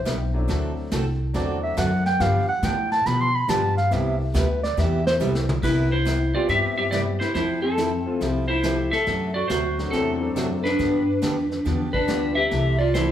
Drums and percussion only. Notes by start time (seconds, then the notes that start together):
0.06 snare, hi-hat pedal
0.49 brush sweep, snare
0.92 snare, hi-hat pedal
1.34 brush sweep, snare
1.77 snare, hi-hat pedal
2.06 snare
2.20 brush sweep, snare
2.63 snare, hi-hat pedal
2.92 snare
3.06 brush sweep, snare
3.49 snare, hi-hat pedal
3.78 snare
3.92 brush sweep, snare
4.35 snare, hi-hat pedal
4.64 snare
4.78 brush sweep, snare
5.07 snare
5.21 hi-hat pedal
5.35 snare
5.49 mid tom
5.63 brush sweep, kick, snare, crash
6.06 snare, hi-hat pedal
6.49 brush sweep, snare
6.92 snare, hi-hat pedal
7.21 snare
7.35 brush sweep, snare
7.78 snare, hi-hat pedal
8.21 brush sweep, snare
8.63 snare, hi-hat pedal
8.93 snare
9.07 brush sweep, snare
9.50 snare, hi-hat pedal
9.79 snare
9.93 brush sweep, snare
10.37 snare, hi-hat pedal
10.65 snare
10.79 brush sweep, snare
11.22 snare, hi-hat pedal
11.51 snare
11.66 brush sweep, snare
11.94 kick
12.09 snare, hi-hat pedal
12.51 brush sweep, snare
12.95 snare, hi-hat pedal